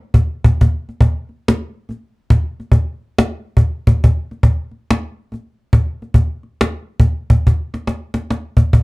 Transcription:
0.14 cajon bass medium
0.44 cajon bass medium
0.61 cajon bass medium
0.89 cajon slap soft
1.01 cajon bass medium
1.29 cajon slap soft
1.48 cajon slap loud
1.89 cajon slap soft
1.91 cajon slap soft
2.30 cajon bass medium
2.60 cajon slap soft
2.72 cajon bass medium
3.18 cajon slap loud
3.57 cajon bass medium
3.87 cajon bass medium
4.04 cajon bass medium
4.31 cajon slap soft
4.43 cajon bass medium
4.71 cajon slap soft
4.91 cajon slap loud
5.32 cajon slap soft
5.34 cajon slap soft
5.73 cajon bass loud
6.02 cajon slap soft
6.14 cajon bass medium
6.43 cajon slap soft
6.61 cajon slap loud
7.00 cajon bass medium
7.30 cajon bass medium
7.47 cajon bass medium
7.47 cajon slap soft
7.74 cajon slap soft
7.87 cajon slap medium
8.14 cajon slap medium
8.30 cajon slap medium
8.57 cajon bass medium
8.73 cajon bass medium

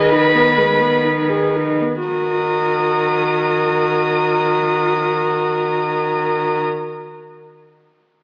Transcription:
0.00 1.76 D#3 soft
0.00 0.13 G#4 soft
0.00 1.80 B4 soft
0.00 0.12 D#5 medium
0.12 0.36 D#4 soft
0.12 1.03 B5 medium
0.35 0.59 B3 soft
0.57 0.82 G#3 soft
0.80 1.06 B3 soft
1.04 1.31 D#4 soft
1.29 1.57 G#4 soft
1.56 1.83 D#4 soft
1.81 2.06 B3 soft
2.07 6.62 D#3 soft
2.07 6.60 F#4 soft
2.07 6.62 A#4 soft
2.07 6.61 D#6 soft

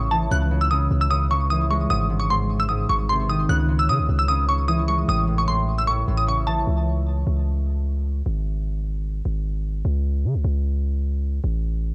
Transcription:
0.00 0.29 A1 loud
0.00 0.29 C#3 medium
0.11 0.36 E3 medium
0.11 0.27 A5 medium
0.31 0.89 C#2 loud
0.31 0.50 C#3 medium
0.31 0.59 F#6 loud
0.51 0.70 C#3 medium
0.61 0.69 E6 medium
0.71 1.09 C#3 medium
0.71 0.99 D#6 medium
0.91 1.86 C#2 loud
1.01 1.09 E6 medium
1.10 1.29 C#3 medium
1.10 1.27 D#6 medium
1.31 1.95 C#3 medium
1.31 1.47 C#6 medium
1.50 1.95 E3 medium
1.50 1.67 D#6 medium
1.71 1.95 G#3 medium
1.71 1.87 C#6 medium
1.90 2.86 G#1 loud
1.90 2.08 G#2 loud
1.90 2.18 D#6 loud
2.10 2.29 G#2 medium
2.20 2.28 C#6 medium
2.30 2.68 G#2 medium
2.30 2.58 C6 medium
2.60 2.68 E6 medium
2.69 2.89 G#2 loud
2.69 2.85 D#6 medium
2.90 3.47 G#1 loud
2.90 3.15 G#2 medium
2.90 3.06 C#6 medium
3.09 3.34 C3 medium
3.09 3.26 C6 loud
3.30 3.54 D#3 medium
3.30 3.46 D#6 medium
3.49 3.90 C#2 loud
3.49 3.67 C#3 loud
3.49 3.77 F#6 loud
3.69 3.88 C#3 medium
3.79 3.87 E6 medium
3.89 4.00 C#3 loud
3.89 4.27 C#3 medium
3.89 4.17 D#6 loud
3.99 4.08 C#2 loud
4.09 5.04 C#2 loud
4.19 4.27 E6 medium
4.28 4.47 C#3 medium
4.28 4.45 D#6 loud
4.48 5.13 C#3 medium
4.48 4.65 C#6 medium
4.68 5.13 E3 medium
4.68 4.84 D#6 medium
4.88 5.13 G#3 medium
4.88 5.04 C#6 medium
5.08 6.04 A1 loud
5.08 5.26 A2 loud
5.08 5.36 D#6 loud
5.27 5.47 A2 medium
5.38 5.46 C#6 medium
5.48 5.86 A2 medium
5.48 5.76 C6 medium
5.78 5.86 E6 medium
5.87 6.07 A2 medium
5.87 6.15 C#6 medium
6.08 6.65 A1 loud
6.08 6.32 A2 medium
6.17 6.26 D#6 medium
6.27 6.72 C#3 medium
6.27 6.44 C#6 medium
6.47 6.72 E3 medium
6.47 6.63 A5 medium
6.67 7.24 C#2 loud
7.27 8.22 C#2 loud
8.26 9.21 G#1 loud
9.25 9.83 G#1 loud
9.85 10.26 C#2 loud
10.25 10.36 C#3 loud
10.35 10.44 C#2 loud
10.44 11.40 C#2 loud
11.44 11.94 A1 loud

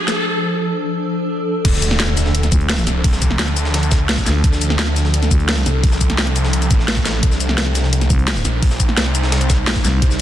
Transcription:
0.00 1.61 F3 medium
0.00 1.61 D4 medium
0.00 1.61 A4 medium
0.00 riser medium
0.08 snare medium
0.08 closed hi-hat medium
0.08 shaker medium
1.65 2.51 D2 loud
1.65 7.19 F3 medium
1.65 7.19 D4 medium
1.65 7.19 A4 medium
1.65 kick loud
1.65 closed hi-hat medium
1.65 closed hi-hat loud
1.65 crash loud
1.65 impact medium
1.74 snare soft
1.74 shaker soft
1.82 closed hi-hat medium
1.82 shaker medium
1.91 snare soft
2.00 snare loud
2.00 closed hi-hat medium
2.00 closed hi-hat loud
2.08 snare soft
2.17 snare soft
2.17 closed hi-hat medium
2.17 shaker medium
2.26 snare soft
2.35 closed hi-hat loud
2.43 snare soft
2.43 closed hi-hat soft
2.43 shaker soft
2.52 2.86 D2 loud
2.52 kick loud
2.52 closed hi-hat medium
2.52 shaker medium
2.61 closed hi-hat soft
2.69 snare loud
2.69 closed hi-hat medium
2.69 closed hi-hat loud
2.78 closed hi-hat soft
2.78 shaker soft
2.87 3.38 C2 loud
2.87 snare soft
2.87 closed hi-hat medium
2.87 shaker medium
3.04 kick loud
3.04 closed hi-hat medium
3.04 open hi-hat medium
3.13 snare medium
3.13 shaker soft
3.22 kick medium
3.22 closed hi-hat medium
3.22 shaker medium
3.31 snare soft
3.39 4.00 D2 loud
3.39 snare loud
3.39 closed hi-hat medium
3.48 snare soft
3.48 closed hi-hat soft
3.57 closed hi-hat medium
3.57 shaker medium
3.65 snare medium
3.74 snare loud
3.74 closed hi-hat medium
3.74 closed hi-hat loud
3.83 closed hi-hat soft
3.83 shaker soft
3.92 kick loud
3.92 snare loud
3.92 closed hi-hat medium
3.92 shaker medium
4.00 4.25 C#2 loud
4.09 snare loud
4.09 closed hi-hat medium
4.18 kick medium
4.18 snare medium
4.18 shaker soft
4.26 4.42 D2 loud
4.26 snare soft
4.26 closed hi-hat medium
4.26 shaker medium
4.44 5.30 D2 loud
4.44 kick loud
4.44 closed hi-hat medium
4.53 snare soft
4.53 shaker soft
4.61 closed hi-hat medium
4.61 shaker medium
4.70 snare soft
4.79 snare loud
4.79 closed hi-hat medium
4.88 snare soft
4.96 snare soft
4.96 closed hi-hat medium
4.96 shaker medium
5.05 snare soft
5.14 closed hi-hat medium
5.14 closed hi-hat loud
5.23 snare soft
5.23 closed hi-hat soft
5.23 shaker soft
5.31 5.65 D2 loud
5.31 kick loud
5.31 closed hi-hat medium
5.31 shaker medium
5.40 closed hi-hat soft
5.49 snare loud
5.49 closed hi-hat medium
5.57 closed hi-hat soft
5.57 shaker soft
5.66 6.17 C2 loud
5.66 snare soft
5.66 closed hi-hat medium
5.66 shaker medium
5.83 kick loud
5.83 closed hi-hat medium
5.83 open hi-hat medium
5.92 snare medium
5.92 shaker soft
6.01 kick medium
6.01 closed hi-hat medium
6.01 shaker medium
6.10 snare soft
6.10 closed hi-hat soft
6.18 6.69 C2 loud
6.18 snare loud
6.18 closed hi-hat medium
6.27 snare soft
6.27 closed hi-hat soft
6.36 closed hi-hat medium
6.36 shaker medium
6.45 snare medium
6.53 closed hi-hat loud
6.53 closed hi-hat medium
6.62 closed hi-hat soft
6.62 shaker soft
6.71 7.22 A1 loud
6.71 kick loud
6.71 closed hi-hat medium
6.71 shaker medium
6.79 snare soft
6.88 snare loud
6.88 closed hi-hat medium
6.97 kick medium
6.97 shaker soft
7.05 snare soft
7.05 snare loud
7.05 closed hi-hat medium
7.05 shaker medium
7.23 8.09 C2 loud
7.23 10.21 G3 medium
7.23 10.21 D#4 medium
7.23 10.21 C5 medium
7.23 kick loud
7.23 closed hi-hat medium
7.32 snare soft
7.32 shaker soft
7.40 closed hi-hat medium
7.40 shaker medium
7.49 snare soft
7.58 snare loud
7.58 closed hi-hat medium
7.67 snare soft
7.75 snare soft
7.75 closed hi-hat medium
7.75 shaker medium
7.84 snare soft
7.93 closed hi-hat medium
8.01 snare soft
8.01 closed hi-hat soft
8.01 shaker soft
8.10 8.44 C2 loud
8.10 kick loud
8.10 closed hi-hat medium
8.10 shaker medium
8.19 closed hi-hat soft
8.28 snare loud
8.28 closed hi-hat medium
8.36 closed hi-hat soft
8.36 shaker soft
8.45 8.96 A#1 loud
8.45 snare soft
8.45 closed hi-hat medium
8.45 shaker medium
8.62 kick loud
8.62 closed hi-hat medium
8.62 open hi-hat medium
8.71 snare medium
8.71 shaker soft
8.80 kick medium
8.80 closed hi-hat medium
8.80 shaker medium
8.89 snare soft
8.97 9.58 C2 loud
8.97 snare loud
8.97 closed hi-hat medium
9.06 snare soft
9.06 closed hi-hat soft
9.15 closed hi-hat medium
9.15 shaker medium
9.23 snare medium
9.32 snare loud
9.32 closed hi-hat medium
9.32 closed hi-hat loud
9.41 closed hi-hat soft
9.41 shaker soft
9.50 kick loud
9.50 snare loud
9.50 closed hi-hat medium
9.50 shaker medium
9.58 9.83 B1 loud
9.67 snare loud
9.67 closed hi-hat medium
9.76 kick medium
9.76 snare medium
9.76 shaker soft
9.85 10.01 C2 loud
9.85 snare soft
9.85 closed hi-hat medium
9.85 shaker medium
10.02 10.21 C2 loud
10.02 kick loud
10.02 closed hi-hat medium
10.11 snare soft
10.11 shaker soft

